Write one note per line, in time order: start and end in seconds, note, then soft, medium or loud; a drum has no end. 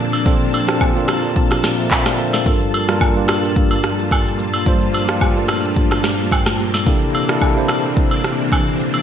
0.00 0.25 A#2 medium
0.00 2.42 F3 medium
0.00 2.42 A#3 medium
0.00 0.25 C4 medium
0.00 0.26 D4 medium
0.00 2.42 D4 medium
0.00 0.27 F4 medium
0.00 2.35 G4 loud
0.00 0.98 A#4 medium
0.00 9.02 A5 medium
0.13 high agogo medium
0.13 shaker soft
0.25 0.59 A#2 medium
0.25 0.59 C4 medium
0.25 0.60 D4 medium
0.25 0.60 F4 medium
0.25 0.60 A4 medium
0.25 kick loud
0.25 shaker medium
0.41 shaker soft
0.53 high agogo medium
0.53 shaker loud
0.67 0.90 A#2 medium
0.67 0.90 C4 medium
0.67 0.90 D4 medium
0.67 0.91 F4 medium
0.67 0.91 A4 medium
0.67 cross-stick loud
0.67 shaker medium
0.81 kick loud
0.81 low woodblock medium
0.81 shaker medium
0.95 1.83 A#2 medium
0.95 1.83 C4 medium
0.95 1.84 D4 medium
0.95 1.84 F4 medium
0.95 1.64 A#4 medium
0.95 shaker medium
1.08 1.34 A#5 medium
1.08 cross-stick loud
1.08 high agogo medium
1.08 shaker medium
1.24 shaker medium
1.36 1.62 A5 medium
1.36 kick loud
1.36 shaker medium
1.51 cross-stick medium
1.51 high agogo medium
1.51 shaker medium
1.63 1.78 D5 medium
1.63 1.78 F5 medium
1.63 cross-stick medium
1.63 snare medium
1.63 shaker loud
1.79 2.05 C5 medium
1.79 2.05 E5 medium
1.79 shaker soft
1.91 2.05 G5 medium
1.91 kick medium
1.91 clap medium
1.91 high agogo medium
1.91 low woodblock medium
1.91 shaker medium
2.06 2.19 A#4 medium
2.06 2.18 D5 medium
2.06 2.18 F5 medium
2.06 cross-stick medium
2.06 snare medium
2.06 shaker medium
2.19 2.34 A4 medium
2.19 2.33 C5 medium
2.19 2.44 E5 medium
2.19 shaker medium
2.33 2.60 G4 medium
2.33 2.60 A#4 medium
2.33 snare medium
2.33 high agogo medium
2.33 shaker soft
2.45 2.79 G2 medium
2.45 6.82 G3 medium
2.45 2.80 A#3 medium
2.45 9.02 A#3 medium
2.45 2.80 D4 medium
2.45 6.82 F4 medium
2.45 2.80 F4 medium
2.45 2.81 A4 medium
2.45 kick loud
2.45 shaker medium
2.61 shaker medium
2.74 high agogo medium
2.74 shaker medium
2.88 3.10 G2 medium
2.88 3.10 A#3 medium
2.88 3.10 D4 medium
2.88 3.11 F4 medium
2.88 3.11 A#4 loud
2.88 cross-stick medium
2.88 shaker medium
3.01 kick loud
3.01 low woodblock medium
3.01 shaker medium
3.15 4.03 G2 medium
3.15 4.04 A#3 medium
3.15 4.04 D4 medium
3.15 4.04 F4 medium
3.15 4.05 G4 medium
3.15 shaker medium
3.28 cross-stick loud
3.28 high agogo medium
3.28 shaker medium
3.44 shaker medium
3.56 kick loud
3.56 shaker medium
3.71 high agogo medium
3.71 shaker medium
3.83 cross-stick medium
3.83 shaker loud
3.99 shaker soft
4.11 kick medium
4.11 high agogo medium
4.11 low woodblock medium
4.11 shaker medium
4.26 shaker medium
4.39 shaker medium
4.54 high agogo medium
4.54 shaker soft
4.65 4.99 G2 medium
4.65 5.00 A#3 medium
4.65 5.00 D4 medium
4.65 5.00 F4 medium
4.65 5.01 C5 medium
4.65 kick loud
4.65 shaker medium
4.81 shaker medium
4.94 high agogo medium
4.94 shaker medium
5.08 5.30 G2 medium
5.08 5.30 A#3 medium
5.08 5.31 D4 medium
5.08 5.31 F4 medium
5.08 5.31 G4 loud
5.08 cross-stick loud
5.08 shaker medium
5.21 kick loud
5.21 low woodblock medium
5.21 shaker medium
5.35 6.24 G2 medium
5.35 5.42 A3 medium
5.35 6.24 D4 medium
5.35 6.25 F4 medium
5.35 6.25 A4 medium
5.35 shaker medium
5.43 6.27 A#3 medium
5.48 cross-stick loud
5.48 high agogo medium
5.48 shaker medium
5.64 shaker medium
5.76 kick loud
5.76 shaker medium
5.91 cross-stick medium
5.91 high agogo medium
5.91 shaker soft
6.03 cross-stick medium
6.03 snare medium
6.03 shaker loud
6.19 shaker soft
6.32 6.46 G5 medium
6.32 kick medium
6.32 high agogo medium
6.32 low woodblock medium
6.32 shaker medium
6.46 6.84 A5 medium
6.46 cross-stick medium
6.46 snare medium
6.46 shaker medium
6.59 shaker medium
6.74 snare medium
6.74 high agogo medium
6.74 shaker medium
6.86 7.20 C3 medium
6.86 9.02 E3 medium
6.86 7.20 A#3 medium
6.86 9.02 C4 medium
6.86 9.02 D4 medium
6.86 7.20 D4 medium
6.86 7.20 E4 medium
6.86 7.21 G4 medium
6.86 7.21 A4 medium
6.86 kick loud
6.86 shaker medium
7.01 shaker medium
7.14 high agogo medium
7.14 shaker loud
7.28 7.50 C3 medium
7.28 7.50 A#3 medium
7.28 7.51 D4 medium
7.28 7.51 E4 medium
7.28 7.51 G4 medium
7.28 7.52 A4 loud
7.28 cross-stick loud
7.28 shaker medium
7.41 kick loud
7.41 low woodblock medium
7.41 shaker medium
7.56 8.44 C3 medium
7.56 8.44 A#3 medium
7.56 8.44 D4 medium
7.56 8.45 E4 medium
7.56 8.45 G4 medium
7.56 8.45 C5 medium
7.56 shaker medium
7.68 cross-stick loud
7.68 high agogo medium
7.68 shaker medium
7.85 shaker medium
7.97 kick loud
7.97 shaker medium
8.11 high agogo medium
8.11 shaker medium
8.24 cross-stick medium
8.24 shaker loud
8.40 shaker medium
8.52 kick medium
8.52 high agogo medium
8.52 low woodblock medium
8.52 shaker medium
8.67 shaker medium
8.79 shaker medium
8.94 high agogo medium
8.94 shaker soft